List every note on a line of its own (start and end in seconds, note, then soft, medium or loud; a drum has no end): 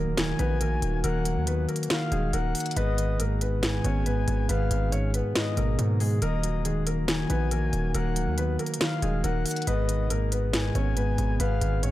0.00 0.35 D#1 loud
0.00 0.16 D#3 medium
0.00 9.63 D#3 medium
0.00 0.61 F#3 medium
0.00 2.73 F#3 medium
0.00 0.37 A#3 medium
0.00 2.73 A#3 medium
0.00 2.73 F#4 medium
0.00 0.37 A#4 medium
0.00 impact medium
0.17 0.60 D#3 medium
0.17 1.00 G#5 loud
0.17 snare loud
0.17 closed hi-hat medium
0.39 0.81 A#1 loud
0.39 0.57 B3 medium
0.39 1.47 D#4 medium
0.39 0.57 B4 medium
0.39 closed hi-hat medium
0.61 1.03 D#3 medium
0.61 1.02 A#3 medium
0.61 1.01 A#4 medium
0.61 closed hi-hat medium
0.82 1.03 D#1 loud
0.82 closed hi-hat medium
1.04 1.38 D#1 loud
1.04 1.46 D#3 loud
1.04 1.45 A#3 medium
1.04 1.45 A#4 loud
1.04 1.45 F#5 loud
1.04 closed hi-hat medium
1.25 2.33 F#3 medium
1.25 closed hi-hat medium
1.36 1.67 D#2 loud
1.47 1.89 D#3 medium
1.47 1.65 B3 medium
1.47 1.65 B4 medium
1.47 closed hi-hat medium
1.69 2.10 A#3 medium
1.69 2.09 A#4 medium
1.69 closed hi-hat soft
1.76 closed hi-hat medium
1.83 closed hi-hat medium
1.90 2.32 D#3 medium
1.90 2.31 F5 medium
1.90 snare loud
1.90 closed hi-hat medium
2.12 2.33 D#1 loud
2.12 2.30 G#3 medium
2.12 2.77 D#4 medium
2.12 2.29 G#4 medium
2.12 closed hi-hat medium
2.33 2.54 D#1 loud
2.33 2.76 D#3 medium
2.33 2.74 A#3 medium
2.33 2.74 A#4 medium
2.33 2.54 F#5 medium
2.33 closed hi-hat medium
2.55 2.75 F#5 medium
2.55 closed hi-hat medium
2.55 open hi-hat medium
2.60 closed hi-hat medium
2.66 closed hi-hat medium
2.71 closed hi-hat medium
2.76 3.80 G#1 loud
2.76 3.18 G#2 medium
2.76 6.18 B2 medium
2.76 6.18 G#3 medium
2.76 3.18 B3 medium
2.76 6.18 G#4 medium
2.76 3.17 B4 loud
2.76 3.17 D#5 loud
2.76 closed hi-hat medium
2.98 4.06 D#3 medium
2.98 closed hi-hat medium
3.20 3.62 G#2 medium
3.20 3.38 A#3 medium
3.20 3.37 A#4 medium
3.20 closed hi-hat medium
3.41 3.82 B3 medium
3.41 3.82 B4 medium
3.41 closed hi-hat medium
3.63 4.05 G#2 medium
3.63 4.45 G#5 medium
3.63 snare loud
3.63 closed hi-hat medium
3.84 4.26 G#1 loud
3.84 4.93 B3 medium
3.84 4.02 C#4 medium
3.84 4.02 C#5 medium
3.84 closed hi-hat medium
4.06 4.48 G#2 medium
4.06 4.47 B3 medium
4.06 4.47 B4 medium
4.06 closed hi-hat medium
4.28 4.48 G#1 loud
4.28 closed hi-hat medium
4.49 4.70 G#1 loud
4.49 4.91 G#2 loud
4.49 4.90 B3 medium
4.49 4.90 B4 loud
4.49 4.90 F5 loud
4.49 closed hi-hat medium
4.71 5.23 G#1 loud
4.71 5.79 D#3 medium
4.71 closed hi-hat medium
4.92 5.34 G#2 medium
4.92 5.10 C#4 medium
4.92 5.10 C#5 medium
4.92 closed hi-hat medium
5.14 5.55 B3 medium
5.14 5.55 B4 medium
5.14 closed hi-hat medium
5.35 5.77 G#2 medium
5.35 5.76 D#5 medium
5.35 snare loud
5.35 closed hi-hat medium
5.57 5.78 G#1 loud
5.57 6.22 B2 medium
5.57 5.98 A#3 medium
5.57 5.98 A#4 medium
5.57 closed hi-hat medium
5.78 6.22 G#2 medium
5.78 6.20 G#2 loud
5.78 closed hi-hat medium
6.00 6.18 G#3 medium
6.00 6.18 G#4 medium
6.00 open hi-hat medium
6.22 7.26 D#1 loud
6.22 6.64 D#3 loud
6.22 9.64 F#3 medium
6.22 9.64 A#3 medium
6.22 6.63 A#3 medium
6.22 9.64 F#4 medium
6.22 6.63 A#4 loud
6.22 6.63 D#5 loud
6.22 closed hi-hat medium
6.43 7.51 F#3 medium
6.43 closed hi-hat medium
6.65 7.07 D#3 medium
6.65 6.83 G#3 medium
6.65 6.83 G#4 medium
6.65 closed hi-hat medium
6.87 7.28 A#3 medium
6.87 7.27 A#4 medium
6.87 closed hi-hat medium
7.08 7.50 D#3 medium
7.08 7.91 G#5 loud
7.08 snare loud
7.08 closed hi-hat medium
7.30 7.71 A#1 loud
7.30 7.48 B3 medium
7.30 8.38 D#4 medium
7.30 7.47 B4 medium
7.30 closed hi-hat medium
7.51 7.93 D#3 medium
7.51 7.92 A#3 medium
7.51 7.92 A#4 medium
7.51 closed hi-hat medium
7.73 7.94 D#1 loud
7.73 closed hi-hat medium
7.95 8.28 D#1 loud
7.95 8.37 D#3 loud
7.95 8.36 A#3 medium
7.95 8.35 A#4 loud
7.95 8.35 F#5 loud
7.95 closed hi-hat medium
8.16 9.23 F#3 medium
8.16 closed hi-hat medium
8.27 8.58 D#2 loud
8.38 8.80 D#3 medium
8.38 8.56 B3 medium
8.38 8.55 B4 medium
8.38 closed hi-hat medium
8.59 9.00 A#3 medium
8.59 9.00 A#4 medium
8.59 closed hi-hat soft
8.66 closed hi-hat medium
8.74 closed hi-hat medium
8.81 9.22 D#3 medium
8.81 9.21 F5 medium
8.81 snare loud
8.81 closed hi-hat medium
9.02 9.23 D#1 loud
9.02 9.20 G#3 medium
9.02 9.67 D#4 medium
9.02 9.20 G#4 medium
9.02 closed hi-hat medium
9.24 9.45 D#1 loud
9.24 9.67 D#3 medium
9.24 9.65 A#3 medium
9.24 9.65 A#4 medium
9.24 9.44 F#5 medium
9.24 closed hi-hat medium
9.46 9.66 F#5 medium
9.46 closed hi-hat medium
9.46 open hi-hat medium
9.51 closed hi-hat medium
9.56 closed hi-hat medium
9.62 closed hi-hat medium
9.67 10.71 G#1 loud
9.67 10.09 G#2 loud
9.67 11.91 B2 medium
9.67 11.91 D#3 medium
9.67 11.91 G#3 medium
9.67 10.08 B3 medium
9.67 11.91 G#4 medium
9.67 10.08 B4 loud
9.67 10.08 D#5 loud
9.67 closed hi-hat medium
9.89 10.97 D#3 medium
9.89 closed hi-hat medium
10.10 10.53 G#2 medium
10.10 10.28 A#3 medium
10.10 10.28 A#4 medium
10.10 closed hi-hat medium
10.32 10.73 B3 medium
10.32 10.73 B4 medium
10.32 closed hi-hat medium
10.53 10.96 G#2 loud
10.53 11.36 G#5 medium
10.53 snare loud
10.53 closed hi-hat medium
10.75 11.17 G#1 loud
10.75 11.83 B3 medium
10.75 10.93 C#4 medium
10.75 10.93 C#5 medium
10.75 closed hi-hat medium
10.97 11.39 G#2 medium
10.97 11.38 B3 medium
10.97 11.37 B4 medium
10.97 closed hi-hat medium
11.18 11.39 G#1 loud
11.18 closed hi-hat medium
11.40 11.61 G#1 loud
11.40 11.82 G#2 loud
11.40 11.81 B3 medium
11.40 11.80 B4 loud
11.40 11.80 F5 loud
11.40 closed hi-hat medium
11.61 11.91 G#1 loud
11.61 11.91 D#3 medium
11.61 closed hi-hat medium
11.83 11.91 G#2 medium
11.83 11.91 C#4 medium
11.83 11.91 C#5 medium
11.83 closed hi-hat medium